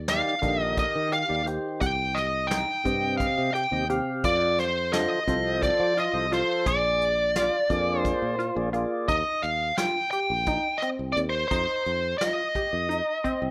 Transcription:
Already playing: fretless electric bass D#2
0.08 tonewheel organ D#3 D#4 G4 D5, synth arpeggio sound D#4, lead electric guitar F5, snare, closed hi-hat
0.42 fretless electric bass A#1, synth arpeggio sound D3, tonewheel organ D#3 G4 A#4 D#5, kick, closed hi-hat
0.62 lead electric guitar D#5
0.77 lead electric guitar D#5, kick, closed hi-hat
0.96 fretless electric bass D#3
1.12 synth arpeggio sound G4, lead electric guitar F5, closed hi-hat
1.28 fretless electric bass D#2, tonewheel organ D#3 D#4 G4 D5
1.45 tonewheel organ D#3 D#4 G4 C5, synth arpeggio sound G4, closed hi-hat
1.81 fretless electric bass C2, synth arpeggio sound G4, lead electric guitar G5, kick, closed hi-hat
2.15 lead electric guitar D#5, snare, closed hi-hat
2.47 synth arpeggio sound D#4, lead electric guitar G5, snare, closed hi-hat
2.84 fretless electric bass G2, tonewheel organ C3 C4 G4 D#5, synth arpeggio sound C4, kick, closed hi-hat
3.17 lead electric guitar F5, kick, closed hi-hat
3.38 fretless electric bass C3
3.54 synth arpeggio sound G4, lead electric guitar G5, closed hi-hat
3.71 fretless electric bass D#2, tonewheel organ C3 C4 G4 D#5
3.89 tonewheel organ C3 C4 G4 F5, synth arpeggio sound G4, closed hi-hat
4.24 fretless electric bass F2, synth arpeggio sound F4, lead electric guitar D5, kick, closed hi-hat
4.59 lead electric guitar C5, snare, closed hi-hat
4.92 synth arpeggio sound D3, tonewheel organ F3 F4 A4 C5, lead electric guitar D#5, snare, closed hi-hat
5.27 fretless electric bass C2, tonewheel organ F3 F4 A4 C5, synth arpeggio sound C4, kick, closed hi-hat
5.63 lead electric guitar D5, kick, closed hi-hat
5.80 fretless electric bass F3
5.97 synth arpeggio sound F4, lead electric guitar D#5, closed hi-hat
6.13 fretless electric bass C2, tonewheel organ F3 F4 A4 C5
6.30 tonewheel organ F3 F4 A4 C5, synth arpeggio sound F4, lead electric guitar C5, snare, closed hi-hat
6.66 fretless electric bass A#1, synth arpeggio sound G#4, lead electric guitar D5, kick, closed hi-hat
7.01 closed hi-hat
7.36 synth arpeggio sound F4, snare, closed hi-hat
7.69 fretless electric bass F2, tonewheel organ A#3 F4 G#4 D5, synth arpeggio sound D4, kick, closed hi-hat
8.00 lead electric guitar C5
8.05 kick, closed hi-hat
8.22 fretless electric bass A#2
8.39 synth arpeggio sound F4, closed hi-hat
8.55 fretless electric bass A#1, tonewheel organ A#3 F4 G#4 D5
8.73 tonewheel organ A#3 F4 G#4 D5, synth arpeggio sound F4, closed hi-hat
9.08 fretless electric bass D#2, synth arpeggio sound D#4, lead electric guitar D#5, kick, closed hi-hat
9.43 fretless electric bass D#2, lead electric guitar F5, closed hi-hat
9.78 synth arpeggio sound F4, lead electric guitar G5, snare, closed hi-hat
10.11 synth arpeggio sound G4, lead electric guitar G5, closed hi-hat
10.30 fretless electric bass A#1
10.46 synth arpeggio sound D#4, kick, closed hi-hat
10.78 lead electric guitar D#5, snare, closed hi-hat
10.82 synth arpeggio sound C4
10.99 fretless electric bass C2
11.12 lead electric guitar D5
11.17 fretless electric bass D#2, closed hi-hat
11.30 lead electric guitar C5
11.48 fretless electric bass F2, synth arpeggio sound D#4, lead electric guitar C5, kick, closed hi-hat
11.86 fretless electric bass F2, closed hi-hat
12.18 synth arpeggio sound F4, lead electric guitar D#5, snare, closed hi-hat
12.55 synth arpeggio sound G4, kick, closed hi-hat
12.73 fretless electric bass F2
12.89 synth arpeggio sound D#4, closed hi-hat
13.24 synth arpeggio sound C4, kick, closed hi-hat
13.42 fretless electric bass C2

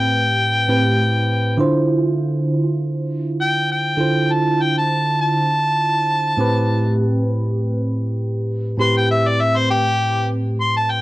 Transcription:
Already playing: tine electric piano A2 C4 G4 B4, harmonica G5
0.68 tine electric piano A2 C4 G4 B4
1.57 tine electric piano D3 E4 F4 C5
3.41 harmonica G5
3.72 harmonica G5
3.97 tine electric piano D3 E4 F4 C5
4.32 harmonica A5
4.62 harmonica G5
4.78 harmonica A5
5.21 harmonica A5
6.37 tine electric piano A2 C4 G4 B4
8.77 tine electric piano A2 C4 G4 B4, harmonica C6
8.97 harmonica G5
9.11 harmonica E5
9.28 harmonica D5
9.41 harmonica E5
9.57 harmonica C5
9.71 harmonica G4
10.61 harmonica C6
10.77 harmonica A5
10.91 harmonica G5

